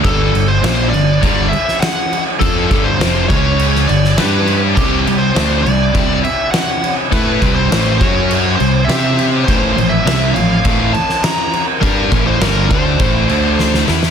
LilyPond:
<<
  \new Staff \with { instrumentName = "Lead electric guitar" } { \time 4/4 \key g \major \tempo 4 = 102 a'8. c''8. d''4 e''8 fis''8. r16 | a'8. c''8. cis''4 d''8 b'8. r16 | g'8. c''8. d''4 e''8 fis''8. r16 | b'8. c''8. cis''4 c''8 e''8. r16 |
c''8. e''8. f''4 a''8 bes''8. r16 | bes'8. c''16 bes'8 c''2 r8 | }
  \new Staff \with { instrumentName = "String section" } { \time 4/4 \key g \major r1 | r1 | <c c' d' e' g'>1~ | <c c' d' e' g'>4. <fis cis' fis'>4 <c c' d' e' g'>4. |
<c' f' bes'>1~ | <c' f' bes'>2~ <c' f' bes'>8 <d a a' d'' a''>4 <c' f' bes'>8 | }
  \new Staff \with { instrumentName = "Distorted electric guitar" } { \clef bass \time 4/4 \key g \major <g, d g>8 <g, d>8 <bes, f bes>8 <g, d>8 <g, d g>8 r4. | <f c' f'>8 <g, d g>8 <f, c f>8 <cis gis cis'>4 <g, d>8 <g d' g'>4 | <c g c'>8 <c g>8 <d a d'>8 <c g>8 <c g c'>8 r4. | <a e' a'>8 <c g c'>8 <a, e a>8 <fis cis' fis'>4 <c g>8 <c' g' c''>4 |
<a, e a>8 <bes, f>8 <c g c'>8 <bes, f>8 <a, e a>8 r4. | <g d' g'>8 <a, e a>8 <g, d g>8 <d a d'>8 <a, e a>8 <d a d'>4 <e b e'>8 | }
  \new Staff \with { instrumentName = "Distorted electric guitar" } { \clef bass \time 4/4 \key g \major <g, d g>8 <g, d>8 <bes, f bes>8 <g, d>8 <g, d g>8 r4. | <f c' f'>8 <g, d g>8 <f, c f>8 <cis gis cis'>4 <g, d>8 <g d' g'>4 | <c g c'>8 <c g>8 <d a d'>8 <c g>8 <c g c'>8 r4. | <a e' a'>8 <c g c'>8 <a, e a>8 <fis cis' fis'>4 <c g>8 <c' g' c''>4 |
<a, e a>8 <bes, f>8 <c g c'>8 <bes, f>8 <a, e a>8 r4. | <g d' g'>8 <a, e a>8 <g, d g>8 <d a d'>8 <a, e a>8 <d a d'>4 <e b e'>8 | }
  \new Staff \with { instrumentName = "Picked electric bass" } { \clef bass \time 4/4 \key g \major g,,8 g,,8 bes,,8 g,,8 g,,8 r4. | f,8 g,,8 f,,8 cis,4 g,,8 g,4 | c,8 c,8 d,8 c,8 c,8 r4. | a,8 c,8 a,,8 fis,4 c,8 c4 |
a,,8 a,,8 c,8 a,,8 a,,8 r4. | g,8 a,,8 g,,8 d,8 a,,8 d,4 e,8 | }
  \new DrumStaff \with { instrumentName = "Drums" } \drummode { \time 4/4 <cymc bd>8 cymc8 <cymc sn>8 cymc8 <cymc bd>8 cymc16 sn16 <cymc sn>8 cymc8 | <cymc bd>8 <cymc bd>8 <cymc sn>8 <cymc bd>8 cymc16 sn16 cymc16 sn16 <cymc sn>8 cymc8 | <cymc bd>8 cymc8 <cymc sn>8 cymc8 <cymc bd>8 cymc8 <cymc sn>8 cymc8 | <cymc bd>8 <cymc bd>8 <cymc sn>8 <cymc bd>8 cymc8 cymc8 <cymc sn>8 cymc8 |
<cymc bd>8 cymc8 <cymc sn>8 cymc8 <cymc bd>8 cymc16 sn16 <cymc sn>8 cymc8 | <cymc bd>8 <cymc bd>8 <cymc sn>8 <cymc bd>8 <cymc bd>8 cymc8 sn16 sn16 sn16 sn16 | }
>>